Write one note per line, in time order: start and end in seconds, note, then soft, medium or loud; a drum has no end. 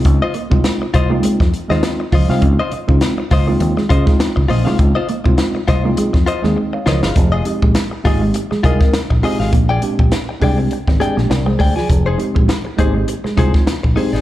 0.00 0.25 G#3 medium
0.00 0.25 C4 medium
0.00 0.26 D#4 medium
0.00 0.26 F4 medium
0.05 0.19 C#2 loud
0.05 muted clean electric guitar stroke soft
0.05 kick loud
0.05 closed hi-hat medium
0.21 0.34 F4 medium
0.21 0.35 C5 medium
0.21 0.35 D#5 medium
0.21 muted clean electric guitar stroke soft
0.34 0.46 A#3 medium
0.34 muted clean electric guitar stroke soft
0.34 closed hi-hat medium
0.50 0.62 C2 medium
0.50 0.84 G#3 medium
0.50 0.85 C4 medium
0.50 0.61 C4 medium
0.50 0.85 D#4 medium
0.50 0.85 F4 loud
0.50 muted clean electric guitar stroke soft
0.50 kick loud
0.64 0.76 C4 medium
0.64 muted clean electric guitar stroke soft
0.64 snare loud
0.64 closed hi-hat medium
0.82 muted clean electric guitar stroke soft
0.93 1.19 C2 medium
0.93 1.12 F4 medium
0.93 1.11 C5 medium
0.93 1.10 D#5 medium
0.93 muted clean electric guitar stroke soft
0.93 kick medium
0.93 closed hi-hat medium
1.10 1.44 G#3 medium
1.10 1.19 A#3 medium
1.10 1.44 C4 medium
1.10 1.44 D#4 medium
1.10 1.45 F4 loud
1.10 muted clean electric guitar stroke medium
1.23 1.35 G#3 medium
1.23 muted fingered electric bass stroke soft
1.23 muted clean electric guitar stroke soft
1.23 closed hi-hat loud
1.40 1.51 F2 medium
1.40 muted clean electric guitar stroke soft
1.40 kick medium
1.40 snare soft
1.54 closed hi-hat medium
1.68 1.81 D#2 medium
1.68 2.03 G#3 medium
1.68 1.79 G#3 medium
1.68 2.03 C4 medium
1.68 2.03 D#4 medium
1.68 2.04 F4 loud
1.68 1.83 F4 medium
1.68 1.83 C5 medium
1.68 1.84 D#5 medium
1.68 snare soft
1.83 muted clean electric guitar stroke soft
1.83 snare loud
1.83 closed hi-hat medium
2.00 muted clean electric guitar stroke medium
2.12 2.26 C#2 medium
2.12 2.24 F3 medium
2.12 2.27 F4 medium
2.12 2.28 C5 medium
2.12 2.28 D#5 medium
2.12 kick medium
2.12 open hi-hat medium
2.28 2.42 C2 loud
2.28 2.62 G#3 medium
2.28 2.62 C4 medium
2.28 2.63 D#4 medium
2.28 2.63 F4 medium
2.28 2.42 C5 soft
2.28 2.41 F5 medium
2.28 snare soft
2.32 2.41 F4 soft
2.42 2.56 C#2 loud
2.42 2.53 C#4 medium
2.42 muted clean electric guitar stroke soft
2.42 kick loud
2.42 closed hi-hat medium
2.59 2.72 F4 medium
2.59 2.72 C5 medium
2.59 2.73 D#5 medium
2.72 muted fingered electric bass stroke soft
2.72 muted clean electric guitar stroke soft
2.72 closed hi-hat medium
2.87 3.00 C#3 medium
2.87 3.21 G#3 medium
2.87 2.97 C4 medium
2.87 3.22 C4 medium
2.87 3.22 D#4 medium
2.87 3.22 F4 loud
2.87 muted clean electric guitar stroke soft
2.87 kick medium
3.01 3.13 C4 medium
3.01 muted clean electric guitar stroke soft
3.01 snare loud
3.01 closed hi-hat medium
3.18 muted clean electric guitar stroke soft
3.30 3.56 C#2 loud
3.30 3.49 F4 medium
3.30 3.48 C5 medium
3.30 3.47 D#5 medium
3.30 muted clean electric guitar stroke soft
3.30 kick loud
3.30 snare soft
3.30 open hi-hat soft
3.47 3.81 G#3 medium
3.47 3.57 A#3 medium
3.47 3.81 C4 medium
3.47 3.81 D#4 medium
3.47 3.81 F4 loud
3.47 muted clean electric guitar stroke medium
3.60 3.74 D#2 loud
3.60 muted clean electric guitar stroke soft
3.60 closed hi-hat loud
3.77 3.86 G#3 medium
3.77 muted clean electric guitar stroke medium
3.77 snare soft
3.89 4.04 C#3 loud
3.89 4.08 F4 medium
3.89 4.07 C5 medium
3.89 4.05 D#5 medium
3.89 kick loud
3.89 closed hi-hat medium
4.06 4.40 G#3 medium
4.06 4.16 G#3 medium
4.06 4.40 C4 medium
4.06 4.40 D#4 medium
4.06 4.41 F4 loud
4.06 kick loud
4.06 snare soft
4.20 muted clean electric guitar stroke soft
4.20 snare loud
4.20 closed hi-hat medium
4.36 4.48 C#2 medium
4.36 muted clean electric guitar stroke medium
4.36 kick medium
4.48 4.67 A#1 loud
4.48 4.61 A#3 medium
4.48 4.63 F4 medium
4.48 4.64 C5 medium
4.48 4.64 D#5 medium
4.48 open hi-hat medium
4.65 4.77 C2 medium
4.65 4.99 G#3 medium
4.65 4.75 G#3 medium
4.65 4.99 C4 medium
4.65 5.00 D#4 medium
4.65 5.00 F4 medium
4.65 4.77 F4 medium
4.65 4.77 C5 soft
4.65 4.77 F5 medium
4.65 snare soft
4.78 4.93 C#2 loud
4.78 muted clean electric guitar stroke medium
4.78 kick loud
4.78 closed hi-hat medium
4.95 5.07 F4 medium
4.95 5.08 C5 medium
4.95 5.08 D#5 medium
4.95 muted clean electric guitar stroke soft
5.08 5.21 A#3 medium
5.08 muted clean electric guitar stroke soft
5.08 closed hi-hat medium
5.24 5.36 C2 medium
5.24 5.58 G#3 medium
5.24 5.58 C4 medium
5.24 5.35 C4 medium
5.24 5.59 D#4 medium
5.24 5.59 F4 loud
5.24 muted clean electric guitar stroke medium
5.24 kick loud
5.38 5.50 C4 medium
5.38 muted clean electric guitar stroke soft
5.38 snare loud
5.38 closed hi-hat medium
5.55 muted clean electric guitar stroke soft
5.68 5.93 C2 loud
5.68 5.86 F4 medium
5.68 5.84 C5 medium
5.68 5.83 D#5 medium
5.68 muted clean electric guitar stroke soft
5.68 kick medium
5.68 snare soft
5.68 closed hi-hat medium
5.83 6.17 G#3 loud
5.83 5.94 A#3 medium
5.83 6.18 C4 medium
5.83 6.18 D#4 medium
5.83 6.18 F4 loud
5.83 muted clean electric guitar stroke soft
5.97 6.09 G#3 medium
5.97 muted clean electric guitar stroke soft
5.97 muted fingered electric bass stroke soft
5.97 closed hi-hat loud
6.13 6.25 F2 medium
6.13 muted clean electric guitar stroke soft
6.13 kick medium
6.13 snare soft
6.26 6.45 F4 medium
6.26 6.43 C5 medium
6.26 6.42 D#5 loud
6.26 closed hi-hat medium
6.43 6.55 D#2 medium
6.43 6.77 G#3 medium
6.43 6.53 G#3 medium
6.43 6.77 C4 medium
6.43 6.77 D#4 medium
6.43 6.57 G#4 loud
6.43 muted clean electric guitar stroke soft
6.43 snare soft
6.56 muted clean electric guitar stroke soft
6.73 6.85 C#5 medium
6.73 6.86 F5 medium
6.73 muted clean electric guitar stroke medium
6.86 7.00 C#2 loud
6.86 6.98 F3 medium
6.86 7.01 F4 medium
6.86 7.02 A#4 medium
6.86 7.01 C5 medium
6.86 7.02 C#5 medium
6.86 7.01 D#5 medium
6.86 snare medium
7.03 7.14 G1 loud
7.03 7.15 F4 soft
7.03 7.31 G#4 medium
7.03 7.31 C5 medium
7.03 7.15 C5 medium
7.03 7.14 F5 medium
7.03 snare loud
7.16 7.41 F1 loud
7.16 7.28 F3 medium
7.16 muted clean electric guitar stroke soft
7.16 kick loud
7.16 closed hi-hat medium
7.32 7.45 F4 medium
7.32 7.45 G#4 medium
7.32 7.46 D#5 medium
7.44 7.79 G#3 medium
7.44 7.80 C4 medium
7.44 7.80 D#4 medium
7.44 7.80 G4 medium
7.44 muted clean electric guitar stroke soft
7.44 closed hi-hat medium
7.62 7.73 A#1 medium
7.62 7.72 G#3 medium
7.62 muted clean electric guitar stroke medium
7.62 kick loud
7.75 muted clean electric guitar stroke soft
7.75 snare loud
7.75 closed hi-hat medium
7.91 muted clean electric guitar stroke soft
8.04 8.30 G#1 loud
8.04 8.39 G#3 medium
8.04 8.16 A#3 medium
8.04 8.39 C4 medium
8.04 8.39 D#4 medium
8.04 8.23 F4 medium
8.04 8.39 G4 medium
8.04 8.22 G#4 medium
8.04 8.20 D#5 medium
8.04 kick medium
8.04 snare soft
8.04 open hi-hat soft
8.22 8.31 G#3 medium
8.22 muted clean electric guitar stroke soft
8.34 muted clean electric guitar stroke medium
8.34 closed hi-hat loud
8.51 8.60 G#3 medium
8.51 muted clean electric guitar stroke soft
8.51 muted fingered electric bass stroke soft
8.51 snare soft
8.63 8.78 C2 loud
8.63 8.98 G#3 medium
8.63 8.98 C4 medium
8.63 8.75 C4 medium
8.63 8.98 D#4 medium
8.63 8.82 F4 medium
8.63 8.80 G#4 medium
8.63 8.99 A#4 loud
8.63 8.79 D#5 loud
8.63 kick loud
8.63 closed hi-hat medium
8.80 muted clean electric guitar stroke soft
8.80 kick loud
8.80 snare soft
8.93 muted clean electric guitar stroke soft
8.93 muted fingered electric bass stroke soft
8.93 snare loud
8.93 closed hi-hat medium
9.10 9.21 A#1 medium
9.10 muted clean electric guitar stroke medium
9.10 kick medium
9.22 9.52 G#3 medium
9.22 9.53 C4 medium
9.22 9.35 C4 medium
9.22 9.53 D#4 medium
9.22 9.38 F4 medium
9.22 9.53 G4 loud
9.22 9.38 G#4 medium
9.22 9.39 D#5 medium
9.22 open hi-hat medium
9.40 9.51 G#1 medium
9.40 9.52 F4 soft
9.40 9.51 G#4 medium
9.40 9.51 F5 medium
9.40 snare soft
9.52 9.77 A#1 loud
9.52 9.64 A#3 medium
9.52 muted clean electric guitar stroke soft
9.52 kick loud
9.52 closed hi-hat medium
9.69 9.82 G#4 medium
9.69 9.82 D5 medium
9.69 9.83 G5 medium
9.81 10.16 G#3 medium
9.81 10.16 C4 medium
9.81 10.17 D4 medium
9.81 10.17 G4 loud
9.81 muted clean electric guitar stroke soft
9.81 closed hi-hat medium
9.99 10.10 A#1 medium
9.99 10.08 C4 medium
9.99 muted clean electric guitar stroke soft
9.99 kick medium
10.12 muted clean electric guitar stroke soft
10.12 snare loud
10.12 closed hi-hat medium
10.29 muted clean electric guitar stroke soft
10.40 10.66 C2 loud
10.40 10.75 G#3 medium
10.40 10.75 C4 medium
10.40 10.53 D4 medium
10.40 10.76 D4 medium
10.40 10.76 G4 medium
10.40 10.60 G#4 medium
10.40 10.59 D5 medium
10.40 kick medium
10.40 open hi-hat soft
10.44 10.58 G5 medium
10.58 10.67 C4 medium
10.58 muted clean electric guitar stroke soft
10.71 muted clean electric guitar stroke soft
10.71 closed hi-hat medium
10.87 10.99 G#1 medium
10.87 10.97 C4 medium
10.87 muted clean electric guitar stroke soft
10.87 kick medium
10.87 snare soft
11.00 11.35 G#3 medium
11.00 11.35 C4 medium
11.00 11.35 D4 medium
11.00 11.31 G4 loud
11.00 11.18 G#4 medium
11.00 11.17 D5 medium
11.00 11.16 G5 medium
11.00 muted clean electric guitar stroke soft
11.00 closed hi-hat medium
11.17 11.28 A#1 medium
11.17 11.26 A#3 medium
11.17 muted clean electric guitar stroke soft
11.17 snare soft
11.30 11.55 C2 medium
11.30 11.46 A#4 medium
11.30 11.46 D5 medium
11.30 muted clean electric guitar stroke soft
11.30 snare loud
11.30 closed hi-hat medium
11.46 11.55 G#3 medium
11.46 11.75 G#4 medium
11.46 11.75 C5 medium
11.46 muted clean electric guitar stroke medium
11.59 11.74 D2 medium
11.59 11.74 G#4 medium
11.59 11.74 D5 medium
11.59 11.75 G5 medium
11.59 kick medium
11.59 open hi-hat medium
11.76 11.85 F3 medium
11.76 12.05 F4 medium
11.76 12.04 G#4 medium
11.76 11.89 G#4 soft
11.76 11.88 D5 soft
11.76 11.87 G#5 medium
11.76 snare soft
11.89 12.14 F1 loud
11.89 12.01 F3 medium
11.89 kick loud
11.89 closed hi-hat medium
12.06 12.17 D#4 medium
12.06 12.18 G#4 medium
12.06 12.19 C5 medium
12.17 12.52 G#3 medium
12.17 12.53 C4 medium
12.17 12.53 D#4 medium
12.17 12.53 G4 medium
12.17 muted clean electric guitar stroke soft
12.17 closed hi-hat medium
12.35 12.47 A#1 medium
12.35 12.44 G#3 medium
12.35 muted clean electric guitar stroke soft
12.35 kick loud
12.48 muted clean electric guitar stroke soft
12.48 snare loud
12.48 closed hi-hat medium
12.65 muted clean electric guitar stroke soft
12.77 13.03 G#1 medium
12.77 13.12 G#3 medium
12.77 12.90 A#3 medium
12.77 13.12 C4 medium
12.77 13.12 D#4 medium
12.77 12.96 D#4 medium
12.77 13.13 G4 loud
12.77 12.95 G#4 medium
12.77 12.94 C5 medium
12.77 kick medium
12.77 closed hi-hat medium
12.94 13.04 G#3 medium
12.94 muted clean electric guitar stroke soft
13.08 muted clean electric guitar stroke soft
13.08 closed hi-hat loud
13.24 13.33 G#3 medium
13.24 muted clean electric guitar stroke soft
13.24 muted fingered electric bass stroke soft
13.24 snare soft
13.36 13.51 C2 medium
13.36 13.71 G#3 medium
13.36 13.71 C4 medium
13.36 13.49 C4 medium
13.36 13.72 D#4 medium
13.36 13.55 D#4 medium
13.36 13.72 F4 loud
13.36 13.54 G#4 loud
13.36 13.53 C5 loud
13.36 kick medium
13.36 closed hi-hat medium
13.54 muted clean electric guitar stroke soft
13.54 kick medium
13.54 snare soft
13.67 muted clean electric guitar stroke soft
13.67 muted fingered electric bass stroke soft
13.67 snare loud
13.67 closed hi-hat medium
13.83 13.95 A#1 medium
13.83 muted clean electric guitar stroke medium
13.83 kick medium
13.95 14.21 G#3 medium
13.95 14.21 C4 medium
13.95 14.08 C4 medium
13.95 14.11 D#4 medium
13.95 14.21 D#4 medium
13.95 14.21 G4 medium
13.95 14.11 G#4 medium
13.95 14.12 C5 medium
13.95 open hi-hat medium
14.13 14.21 G#1 loud
14.13 14.21 D#4 medium
14.13 14.21 G#4 medium
14.13 14.21 D5 medium
14.13 snare soft